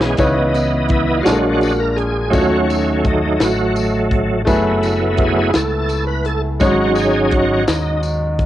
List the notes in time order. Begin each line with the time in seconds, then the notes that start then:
Already playing: B1 C#3 E3 G#3 B3 C#4 E4 G#4 C#5
0.01 snare
0.17 C#2 C#3 E3 B3 C#4 D#4 E4 C#5 D#5, kick, closed hi-hat, tambourine
0.54 closed hi-hat, tambourine
0.89 E4, kick, closed hi-hat
1.17 F4
1.22 A#2 F#3 G#3 D4 F#4, closed hi-hat
1.26 A#1 F#3 A#3 D4 A4, snare, tambourine
1.33 A#4
1.61 closed hi-hat, tambourine
1.80 A#4
1.96 G#4, closed hi-hat
2.30 D#2 D#3 F#3 A3 C#4 D#4 F4 F#4, kick, closed hi-hat, tambourine
2.35 C#5
2.40 F#4
2.69 C#4, closed hi-hat, tambourine
3.05 D#4, kick, closed hi-hat
3.40 A1 F#4, snare, closed hi-hat, tambourine
3.76 closed hi-hat, tambourine
4.11 kick, closed hi-hat
4.45 F#1 F#3 A3 B3 E4 G#4 B4, kick, closed hi-hat, tambourine
4.49 E4
4.83 closed hi-hat, tambourine
5.17 kick, closed hi-hat
5.22 G#4
5.54 C#2 A4, snare, closed hi-hat, tambourine
5.89 closed hi-hat, tambourine
6.07 B4
6.25 A4, closed hi-hat
6.60 G#1 G#2 F#3 G#3 C#4 D#4 F#4 C#5 D#5, kick, closed hi-hat, tambourine
6.95 G#4, closed hi-hat, tambourine
7.31 F#4, kick, closed hi-hat
7.68 D#2 D#4, snare, closed hi-hat, tambourine
8.03 closed hi-hat, tambourine
8.39 kick, closed hi-hat